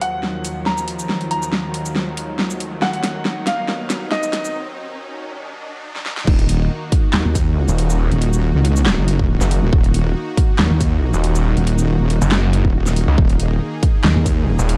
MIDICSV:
0, 0, Header, 1, 7, 480
1, 0, Start_track
1, 0, Key_signature, -6, "minor"
1, 0, Tempo, 431655
1, 1217, Time_signature, 4, 2, 24, 8
1, 16426, End_track
2, 0, Start_track
2, 0, Title_t, "Grand piano"
2, 0, Program_c, 0, 0
2, 17, Note_on_c, 0, 78, 90
2, 647, Note_off_c, 0, 78, 0
2, 737, Note_on_c, 0, 82, 88
2, 1366, Note_off_c, 0, 82, 0
2, 1456, Note_on_c, 0, 82, 90
2, 3046, Note_off_c, 0, 82, 0
2, 3136, Note_on_c, 0, 78, 100
2, 3766, Note_off_c, 0, 78, 0
2, 3856, Note_on_c, 0, 77, 98
2, 4486, Note_off_c, 0, 77, 0
2, 4576, Note_on_c, 0, 75, 93
2, 5056, Note_off_c, 0, 75, 0
2, 16426, End_track
3, 0, Start_track
3, 0, Title_t, "Supersaw synth"
3, 0, Program_c, 1, 81
3, 0, Note_on_c, 1, 39, 84
3, 0, Note_on_c, 1, 51, 75
3, 0, Note_on_c, 1, 53, 91
3, 0, Note_on_c, 1, 54, 77
3, 3098, Note_off_c, 1, 53, 0
3, 3137, Note_on_c, 1, 63, 94
3, 6932, Note_off_c, 1, 39, 0
3, 6932, Note_off_c, 1, 51, 0
3, 6932, Note_off_c, 1, 54, 0
3, 6938, Note_off_c, 1, 63, 0
3, 6975, Note_on_c, 1, 51, 82
3, 6975, Note_on_c, 1, 63, 77
3, 6975, Note_on_c, 1, 66, 98
3, 6976, Note_on_c, 1, 58, 79
3, 14637, Note_off_c, 1, 66, 0
3, 14656, Note_on_c, 1, 68, 96
3, 16426, Note_off_c, 1, 51, 0
3, 16426, Note_off_c, 1, 58, 0
3, 16426, Note_off_c, 1, 63, 0
3, 16426, Note_off_c, 1, 68, 0
3, 16426, End_track
4, 0, Start_track
4, 0, Title_t, "Detuned saw bass"
4, 0, Program_c, 2, 39
4, 7936, Note_on_c, 2, 39, 101
4, 8043, Note_off_c, 2, 39, 0
4, 8544, Note_on_c, 2, 27, 95
4, 9003, Note_off_c, 2, 27, 0
4, 10463, Note_on_c, 2, 30, 95
4, 10683, Note_off_c, 2, 30, 0
4, 11776, Note_on_c, 2, 39, 104
4, 11883, Note_off_c, 2, 39, 0
4, 12383, Note_on_c, 2, 27, 94
4, 12843, Note_off_c, 2, 27, 0
4, 13584, Note_on_c, 2, 30, 95
4, 14043, Note_off_c, 2, 30, 0
4, 14543, Note_on_c, 2, 37, 103
4, 14638, Note_off_c, 2, 37, 0
4, 15616, Note_on_c, 2, 39, 103
4, 15723, Note_off_c, 2, 39, 0
4, 16223, Note_on_c, 2, 27, 98
4, 16426, Note_off_c, 2, 27, 0
4, 16426, End_track
5, 0, Start_track
5, 0, Title_t, "Wobble bass"
5, 0, Program_c, 3, 39
5, 6976, Note_on_c, 3, 27, 99
5, 7438, Note_off_c, 3, 27, 0
5, 8063, Note_on_c, 3, 39, 98
5, 8523, Note_off_c, 3, 39, 0
5, 9023, Note_on_c, 3, 27, 104
5, 9483, Note_off_c, 3, 27, 0
5, 9503, Note_on_c, 3, 37, 100
5, 9963, Note_off_c, 3, 37, 0
5, 9983, Note_on_c, 3, 30, 93
5, 10443, Note_off_c, 3, 30, 0
5, 10703, Note_on_c, 3, 27, 105
5, 10798, Note_off_c, 3, 27, 0
5, 10816, Note_on_c, 3, 27, 97
5, 11278, Note_off_c, 3, 27, 0
5, 11903, Note_on_c, 3, 39, 98
5, 12363, Note_off_c, 3, 39, 0
5, 12863, Note_on_c, 3, 27, 101
5, 13323, Note_off_c, 3, 27, 0
5, 13344, Note_on_c, 3, 27, 101
5, 13563, Note_off_c, 3, 27, 0
5, 14063, Note_on_c, 3, 27, 98
5, 14523, Note_off_c, 3, 27, 0
5, 14656, Note_on_c, 3, 27, 96
5, 15118, Note_off_c, 3, 27, 0
5, 15743, Note_on_c, 3, 39, 94
5, 16203, Note_off_c, 3, 39, 0
5, 16426, End_track
6, 0, Start_track
6, 0, Title_t, "Riser"
6, 0, Program_c, 4, 103
6, 0, Note_on_c, 4, 60, 81
6, 6976, Note_off_c, 4, 60, 0
6, 16426, End_track
7, 0, Start_track
7, 0, Title_t, "Drums"
7, 16, Note_on_c, 9, 42, 78
7, 127, Note_off_c, 9, 42, 0
7, 256, Note_on_c, 9, 38, 48
7, 367, Note_off_c, 9, 38, 0
7, 495, Note_on_c, 9, 42, 82
7, 495, Note_on_c, 9, 82, 60
7, 607, Note_off_c, 9, 42, 0
7, 607, Note_off_c, 9, 82, 0
7, 736, Note_on_c, 9, 38, 54
7, 847, Note_off_c, 9, 38, 0
7, 863, Note_on_c, 9, 82, 78
7, 974, Note_off_c, 9, 82, 0
7, 975, Note_on_c, 9, 42, 83
7, 1086, Note_off_c, 9, 42, 0
7, 1102, Note_on_c, 9, 82, 81
7, 1214, Note_off_c, 9, 82, 0
7, 1215, Note_on_c, 9, 38, 55
7, 1326, Note_off_c, 9, 38, 0
7, 1343, Note_on_c, 9, 42, 36
7, 1454, Note_off_c, 9, 42, 0
7, 1455, Note_on_c, 9, 42, 77
7, 1567, Note_off_c, 9, 42, 0
7, 1583, Note_on_c, 9, 82, 79
7, 1694, Note_off_c, 9, 82, 0
7, 1696, Note_on_c, 9, 38, 62
7, 1807, Note_off_c, 9, 38, 0
7, 1935, Note_on_c, 9, 42, 77
7, 2047, Note_off_c, 9, 42, 0
7, 2063, Note_on_c, 9, 82, 76
7, 2174, Note_off_c, 9, 82, 0
7, 2175, Note_on_c, 9, 38, 62
7, 2286, Note_off_c, 9, 38, 0
7, 2416, Note_on_c, 9, 42, 80
7, 2527, Note_off_c, 9, 42, 0
7, 2656, Note_on_c, 9, 38, 66
7, 2767, Note_off_c, 9, 38, 0
7, 2783, Note_on_c, 9, 82, 75
7, 2894, Note_off_c, 9, 82, 0
7, 2895, Note_on_c, 9, 42, 83
7, 3007, Note_off_c, 9, 42, 0
7, 3135, Note_on_c, 9, 38, 74
7, 3246, Note_off_c, 9, 38, 0
7, 3263, Note_on_c, 9, 42, 36
7, 3374, Note_off_c, 9, 42, 0
7, 3375, Note_on_c, 9, 38, 75
7, 3375, Note_on_c, 9, 42, 77
7, 3486, Note_off_c, 9, 38, 0
7, 3486, Note_off_c, 9, 42, 0
7, 3616, Note_on_c, 9, 38, 78
7, 3727, Note_off_c, 9, 38, 0
7, 3856, Note_on_c, 9, 38, 78
7, 3856, Note_on_c, 9, 42, 77
7, 3967, Note_off_c, 9, 38, 0
7, 3967, Note_off_c, 9, 42, 0
7, 4096, Note_on_c, 9, 38, 77
7, 4207, Note_off_c, 9, 38, 0
7, 4336, Note_on_c, 9, 38, 84
7, 4336, Note_on_c, 9, 42, 78
7, 4336, Note_on_c, 9, 82, 56
7, 4447, Note_off_c, 9, 38, 0
7, 4447, Note_off_c, 9, 42, 0
7, 4447, Note_off_c, 9, 82, 0
7, 4576, Note_on_c, 9, 38, 85
7, 4687, Note_off_c, 9, 38, 0
7, 4704, Note_on_c, 9, 82, 79
7, 4815, Note_off_c, 9, 82, 0
7, 4816, Note_on_c, 9, 38, 94
7, 4816, Note_on_c, 9, 42, 76
7, 4927, Note_off_c, 9, 38, 0
7, 4927, Note_off_c, 9, 42, 0
7, 4944, Note_on_c, 9, 82, 75
7, 5055, Note_off_c, 9, 82, 0
7, 6624, Note_on_c, 9, 38, 55
7, 6735, Note_off_c, 9, 38, 0
7, 6736, Note_on_c, 9, 38, 81
7, 6847, Note_off_c, 9, 38, 0
7, 6863, Note_on_c, 9, 38, 87
7, 6974, Note_off_c, 9, 38, 0
7, 6976, Note_on_c, 9, 36, 127
7, 6976, Note_on_c, 9, 49, 103
7, 7087, Note_off_c, 9, 49, 0
7, 7088, Note_off_c, 9, 36, 0
7, 7104, Note_on_c, 9, 42, 38
7, 7215, Note_off_c, 9, 42, 0
7, 7217, Note_on_c, 9, 42, 83
7, 7328, Note_off_c, 9, 42, 0
7, 7696, Note_on_c, 9, 36, 111
7, 7696, Note_on_c, 9, 42, 82
7, 7807, Note_off_c, 9, 36, 0
7, 7807, Note_off_c, 9, 42, 0
7, 7936, Note_on_c, 9, 38, 115
7, 7936, Note_on_c, 9, 39, 91
7, 8047, Note_off_c, 9, 38, 0
7, 8047, Note_off_c, 9, 39, 0
7, 8176, Note_on_c, 9, 36, 62
7, 8176, Note_on_c, 9, 42, 85
7, 8176, Note_on_c, 9, 82, 65
7, 8287, Note_off_c, 9, 36, 0
7, 8288, Note_off_c, 9, 42, 0
7, 8288, Note_off_c, 9, 82, 0
7, 8543, Note_on_c, 9, 82, 82
7, 8654, Note_off_c, 9, 82, 0
7, 8656, Note_on_c, 9, 42, 85
7, 8767, Note_off_c, 9, 42, 0
7, 8784, Note_on_c, 9, 82, 84
7, 8895, Note_off_c, 9, 82, 0
7, 9024, Note_on_c, 9, 42, 36
7, 9135, Note_off_c, 9, 42, 0
7, 9136, Note_on_c, 9, 42, 82
7, 9248, Note_off_c, 9, 42, 0
7, 9264, Note_on_c, 9, 82, 80
7, 9375, Note_off_c, 9, 82, 0
7, 9616, Note_on_c, 9, 42, 83
7, 9727, Note_off_c, 9, 42, 0
7, 9743, Note_on_c, 9, 82, 78
7, 9854, Note_off_c, 9, 82, 0
7, 9855, Note_on_c, 9, 38, 121
7, 9855, Note_on_c, 9, 39, 94
7, 9967, Note_off_c, 9, 38, 0
7, 9967, Note_off_c, 9, 39, 0
7, 10096, Note_on_c, 9, 42, 82
7, 10207, Note_off_c, 9, 42, 0
7, 10223, Note_on_c, 9, 36, 66
7, 10334, Note_off_c, 9, 36, 0
7, 10463, Note_on_c, 9, 38, 40
7, 10463, Note_on_c, 9, 82, 79
7, 10574, Note_off_c, 9, 38, 0
7, 10574, Note_off_c, 9, 82, 0
7, 10576, Note_on_c, 9, 42, 85
7, 10687, Note_off_c, 9, 42, 0
7, 10816, Note_on_c, 9, 36, 127
7, 10927, Note_off_c, 9, 36, 0
7, 10943, Note_on_c, 9, 42, 37
7, 11055, Note_off_c, 9, 42, 0
7, 11056, Note_on_c, 9, 42, 79
7, 11168, Note_off_c, 9, 42, 0
7, 11536, Note_on_c, 9, 36, 120
7, 11536, Note_on_c, 9, 42, 77
7, 11647, Note_off_c, 9, 36, 0
7, 11648, Note_off_c, 9, 42, 0
7, 11776, Note_on_c, 9, 38, 117
7, 11776, Note_on_c, 9, 39, 87
7, 11887, Note_off_c, 9, 38, 0
7, 11887, Note_off_c, 9, 39, 0
7, 12016, Note_on_c, 9, 36, 66
7, 12016, Note_on_c, 9, 42, 79
7, 12016, Note_on_c, 9, 82, 61
7, 12127, Note_off_c, 9, 36, 0
7, 12127, Note_off_c, 9, 42, 0
7, 12127, Note_off_c, 9, 82, 0
7, 12383, Note_on_c, 9, 82, 75
7, 12495, Note_off_c, 9, 82, 0
7, 12496, Note_on_c, 9, 42, 80
7, 12607, Note_off_c, 9, 42, 0
7, 12624, Note_on_c, 9, 82, 77
7, 12735, Note_off_c, 9, 82, 0
7, 12864, Note_on_c, 9, 42, 37
7, 12975, Note_off_c, 9, 42, 0
7, 12976, Note_on_c, 9, 42, 79
7, 13088, Note_off_c, 9, 42, 0
7, 13104, Note_on_c, 9, 82, 79
7, 13215, Note_off_c, 9, 82, 0
7, 13456, Note_on_c, 9, 42, 73
7, 13568, Note_off_c, 9, 42, 0
7, 13584, Note_on_c, 9, 82, 78
7, 13695, Note_off_c, 9, 82, 0
7, 13696, Note_on_c, 9, 38, 121
7, 13696, Note_on_c, 9, 39, 85
7, 13808, Note_off_c, 9, 38, 0
7, 13808, Note_off_c, 9, 39, 0
7, 13936, Note_on_c, 9, 42, 76
7, 14047, Note_off_c, 9, 42, 0
7, 14064, Note_on_c, 9, 36, 62
7, 14175, Note_off_c, 9, 36, 0
7, 14304, Note_on_c, 9, 38, 40
7, 14304, Note_on_c, 9, 82, 82
7, 14415, Note_off_c, 9, 38, 0
7, 14415, Note_off_c, 9, 82, 0
7, 14416, Note_on_c, 9, 42, 79
7, 14527, Note_off_c, 9, 42, 0
7, 14656, Note_on_c, 9, 36, 123
7, 14767, Note_off_c, 9, 36, 0
7, 14783, Note_on_c, 9, 42, 37
7, 14895, Note_off_c, 9, 42, 0
7, 14896, Note_on_c, 9, 42, 79
7, 15007, Note_off_c, 9, 42, 0
7, 15376, Note_on_c, 9, 36, 114
7, 15376, Note_on_c, 9, 42, 77
7, 15487, Note_off_c, 9, 36, 0
7, 15487, Note_off_c, 9, 42, 0
7, 15616, Note_on_c, 9, 38, 116
7, 15616, Note_on_c, 9, 39, 85
7, 15727, Note_off_c, 9, 38, 0
7, 15727, Note_off_c, 9, 39, 0
7, 15856, Note_on_c, 9, 36, 60
7, 15856, Note_on_c, 9, 42, 80
7, 15856, Note_on_c, 9, 82, 64
7, 15967, Note_off_c, 9, 36, 0
7, 15967, Note_off_c, 9, 42, 0
7, 15967, Note_off_c, 9, 82, 0
7, 16223, Note_on_c, 9, 82, 83
7, 16334, Note_off_c, 9, 82, 0
7, 16336, Note_on_c, 9, 42, 80
7, 16426, Note_off_c, 9, 42, 0
7, 16426, End_track
0, 0, End_of_file